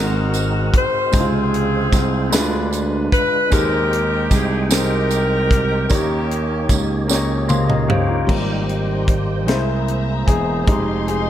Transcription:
0.00 0.70 G#1 medium
0.00 1.09 G#2 medium
0.00 0.69 G#3 medium
0.00 1.11 G#3 medium
0.00 0.69 C4 medium
0.00 1.12 C4 medium
0.00 0.70 D#4 medium
0.00 0.71 D#4 medium
0.00 0.70 F#4 medium
0.00 0.71 F#4 medium
0.00 1.14 F#4 medium
0.00 0.36 A#4 medium
0.00 0.70 A#4 medium
0.00 1.14 A#4 medium
0.34 closed hi-hat soft
0.34 tambourine soft
0.38 0.73 A#4 medium
0.74 1.15 C5 medium
0.74 kick medium
0.74 closed hi-hat medium
1.12 1.89 C#2 medium
1.12 2.28 C3 medium
1.12 1.88 G#3 medium
1.12 2.32 G#3 medium
1.12 1.89 C4 medium
1.12 2.32 C4 medium
1.12 1.20 D#4 medium
1.12 2.32 F4 medium
1.12 2.32 C5 medium
1.12 1.90 C5 medium
1.12 kick loud
1.12 closed hi-hat medium
1.12 tambourine medium
1.16 2.70 C4 medium
1.16 2.70 F4 medium
1.16 2.71 G#4 medium
1.20 1.93 F4 medium
1.54 closed hi-hat soft
1.93 2.29 C2 loud
1.93 kick medium
1.93 snare soft
1.93 closed hi-hat medium
1.93 tambourine medium
2.30 3.08 D2 loud
2.30 3.47 D3 medium
2.30 3.07 G#3 medium
2.30 3.50 G#3 medium
2.30 3.08 D4 medium
2.30 2.39 E4 medium
2.30 2.40 E4 medium
2.30 3.09 B4 medium
2.30 3.52 B4 medium
2.30 closed hi-hat medium
2.30 tambourine loud
2.34 3.53 D4 medium
2.34 snare loud
2.39 3.11 F4 medium
2.39 3.55 F4 medium
2.73 closed hi-hat soft
2.73 tambourine medium
3.12 3.50 B4 medium
3.12 kick medium
3.12 closed hi-hat medium
3.51 4.27 D#2 loud
3.51 4.67 D#3 medium
3.51 4.27 G#3 medium
3.51 5.86 G#3 medium
3.51 4.27 C4 medium
3.51 5.86 D#4 medium
3.51 4.28 D#4 medium
3.51 4.28 G4 medium
3.51 4.68 G4 medium
3.51 4.28 A#4 loud
3.51 5.87 C5 medium
3.51 4.29 C5 medium
3.51 5.87 G5 medium
3.51 kick medium
3.51 closed hi-hat medium
3.51 tambourine medium
3.93 closed hi-hat soft
4.31 5.86 C2 medium
4.31 4.72 G#4 medium
4.31 kick medium
4.31 closed hi-hat medium
4.31 tambourine medium
4.69 5.46 G#3 medium
4.69 5.46 C4 medium
4.69 5.46 D#4 medium
4.69 5.47 G4 medium
4.69 5.47 C5 medium
4.69 snare loud
4.69 closed hi-hat medium
4.69 tambourine loud
4.73 5.87 G4 medium
4.73 5.88 A#4 loud
5.11 closed hi-hat soft
5.11 tambourine medium
5.51 kick medium
5.51 closed hi-hat medium
5.89 6.66 D#2 loud
5.89 7.05 D#3 medium
5.89 6.65 A#3 medium
5.89 8.25 A#3 medium
5.89 6.66 C#4 medium
5.89 6.66 D#4 medium
5.89 8.25 D#4 medium
5.89 8.25 G4 medium
5.89 6.66 G4 medium
5.89 8.25 C#5 medium
5.89 6.67 C#5 medium
5.89 kick loud
5.89 closed hi-hat medium
5.89 tambourine medium
5.93 7.07 A#3 medium
5.93 7.07 C#4 medium
5.93 6.81 G4 medium
6.31 closed hi-hat soft
6.69 8.25 C#2 medium
6.69 kick medium
6.69 closed hi-hat medium
6.69 tambourine medium
7.08 7.85 A#3 medium
7.08 7.85 C#4 medium
7.08 7.85 D#4 medium
7.08 7.50 G4 medium
7.08 7.50 C#5 medium
7.08 snare medium
7.08 tambourine loud
7.47 7.68 C5 medium
7.47 7.85 D#5 medium
7.47 7.68 F5 medium
7.47 7.86 C6 medium
7.47 high tom medium
7.47 tambourine medium
7.68 7.88 A#4 soft
7.68 7.88 D#5 medium
7.68 mid tom medium
7.88 8.08 G4 medium
7.88 8.08 C5 medium
7.88 8.26 F5 medium
7.88 8.26 G5 medium
7.88 mid tom medium
8.08 8.47 F4 soft
8.08 8.46 A#4 medium
8.27 9.48 G#1 medium
8.27 8.81 G3 soft
8.27 9.48 G3 medium
8.27 8.81 A#3 soft
8.27 8.81 C4 medium
8.27 9.45 D#4 medium
8.27 9.48 G4 medium
8.27 9.45 C5 medium
8.27 10.65 C5 medium
8.27 9.47 D#5 medium
8.27 9.46 G5 medium
8.27 kick medium
8.27 crash medium
8.69 closed hi-hat soft
9.08 kick medium
9.08 closed hi-hat medium
9.46 10.24 C2 medium
9.46 10.63 G#3 soft
9.46 10.67 A#3 medium
9.46 10.63 A#3 soft
9.46 9.54 D#4 soft
9.46 10.64 E4 medium
9.46 10.67 G#4 soft
9.46 10.66 C5 medium
9.46 10.30 C5 medium
9.46 10.66 E5 medium
9.46 10.66 A#5 medium
9.46 snare medium
9.46 closed hi-hat medium
9.53 10.70 E4 medium
9.88 closed hi-hat soft
10.27 10.64 E1 medium
10.27 11.06 G#4 medium
10.27 kick medium
10.27 closed hi-hat medium
10.67 11.30 F1 medium
10.67 11.30 G#3 medium
10.67 11.30 G#3 soft
10.67 11.30 D#4 soft
10.67 11.30 D#4 medium
10.67 11.30 F4 medium
10.67 11.30 G4 soft
10.67 11.30 C5 medium
10.67 11.30 D#5 medium
10.67 11.30 F5 medium
10.67 11.30 C6 medium
10.67 kick medium
10.67 closed hi-hat medium
11.07 11.30 G#4 medium
11.07 closed hi-hat soft

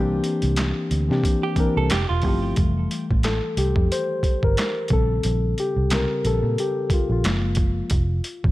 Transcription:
0.00 0.20 C2 loud
0.00 0.88 E3 loud
0.00 0.89 A#3 loud
0.00 0.90 C4 medium
0.00 0.90 D4 loud
0.00 0.91 G4 loud
0.24 closed hi-hat medium
0.42 0.71 C2 medium
0.42 closed hi-hat soft
0.56 snare loud
0.56 clap medium
0.56 closed hi-hat medium
0.91 1.07 D2 medium
0.91 closed hi-hat medium
1.08 1.22 C3 medium
1.08 1.50 E3 medium
1.08 1.50 A#3 medium
1.08 1.51 C4 medium
1.08 1.51 D4 medium
1.08 1.52 G4 medium
1.08 snare soft
1.24 kick loud
1.24 closed hi-hat medium
1.43 1.75 G4 medium
1.56 1.90 E3 medium
1.56 1.90 A#3 medium
1.56 1.91 C4 medium
1.56 1.91 D4 medium
1.56 muted fingered electric bass stroke soft
1.56 kick medium
1.56 closed hi-hat medium
1.60 1.92 A#4 medium
1.77 1.89 C2 medium
1.77 1.91 A4 medium
1.90 2.07 F1 medium
1.90 2.09 G4 medium
1.90 snare loud
1.90 clap medium
1.90 closed hi-hat loud
2.09 2.24 E1 medium
2.09 2.55 F4 medium
2.22 2.52 G1 medium
2.22 2.52 F3 medium
2.22 2.53 A3 medium
2.22 2.53 C4 medium
2.22 2.53 E4 medium
2.22 kick medium
2.22 open hi-hat soft
2.26 2.54 G4 medium
2.56 2.86 F1 medium
2.56 3.54 E3 medium
2.56 3.54 G3 soft
2.56 3.54 A3 medium
2.56 kick medium
2.56 closed hi-hat medium
2.91 closed hi-hat medium
3.11 3.39 A1 medium
3.11 kick medium
3.23 3.55 A4 medium
3.23 snare loud
3.23 clap medium
3.23 closed hi-hat medium
3.57 3.73 C2 medium
3.57 3.92 G4 medium
3.57 closed hi-hat medium
3.76 3.89 F2 loud
3.76 kick medium
3.92 4.45 C5 medium
3.92 closed hi-hat medium
4.23 muted fingered electric bass stroke soft
4.23 kick medium
4.23 closed hi-hat medium
4.43 4.56 G1 medium
4.43 4.93 A#4 medium
4.43 kick medium
4.57 snare loud
4.57 clap medium
4.57 closed hi-hat medium
4.88 5.19 A#1 medium
4.88 5.86 C#3 soft
4.88 5.87 G3 soft
4.88 5.87 C4 medium
4.88 kick loud
4.88 closed hi-hat medium
4.93 5.61 A4 medium
5.23 5.53 A#1 loud
5.23 closed hi-hat medium
5.58 5.93 G4 medium
5.58 closed hi-hat medium
5.76 6.05 C2 medium
5.90 6.21 C#3 soft
5.90 6.21 G3 soft
5.90 6.21 C4 medium
5.90 6.27 A#4 medium
5.90 snare loud
5.90 clap medium
5.90 closed hi-hat medium
6.25 6.40 A#1 medium
6.25 6.60 A4 medium
6.25 closed hi-hat medium
6.43 6.55 A#2 loud
6.58 6.93 G4 medium
6.58 closed hi-hat medium
6.90 7.11 F4 medium
6.90 muted fingered electric bass stroke soft
6.90 kick loud
6.90 closed hi-hat medium
7.10 7.22 A#1 medium
7.10 8.52 F4 medium
7.24 7.81 F#1 medium
7.24 7.70 F3 medium
7.24 7.70 G#3 medium
7.24 7.71 A#3 medium
7.24 snare loud
7.24 clap medium
7.24 closed hi-hat loud
7.55 kick medium
7.55 closed hi-hat medium
7.90 8.19 F1 loud
7.90 kick loud
7.90 closed hi-hat medium
8.24 closed hi-hat medium
8.44 8.52 A1 medium
8.44 kick medium

